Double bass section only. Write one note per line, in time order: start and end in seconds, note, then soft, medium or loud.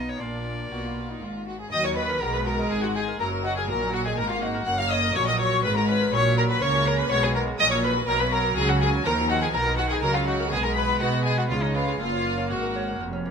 0.00 0.20 B1 soft
0.21 0.71 A#1 soft
0.71 1.21 B1 soft
1.22 1.72 G#1 medium
1.73 2.18 D#2 medium
2.22 2.70 B1 medium
2.71 3.19 G#1 medium
3.20 3.68 F#1 medium
3.69 4.18 A#1 medium
4.18 4.67 G#1 medium
4.67 5.15 F#1 medium
5.16 5.65 A#1 medium
5.65 6.12 G#1 medium
6.13 6.61 A#1 medium
6.62 7.10 C#2 medium
7.11 7.59 B1 medium
7.60 8.07 A#1 medium
8.08 8.56 B1 medium
8.57 9.05 C#2 medium
9.06 9.53 D#2 medium
9.54 10.02 B1 medium
10.03 10.51 C#2 medium
10.51 11.01 B1 medium
11.01 11.49 B2 medium
11.50 12.00 C#2 medium
12.00 12.49 F#1 medium
12.51 13.01 G#1 medium
13.01 13.31 F1 medium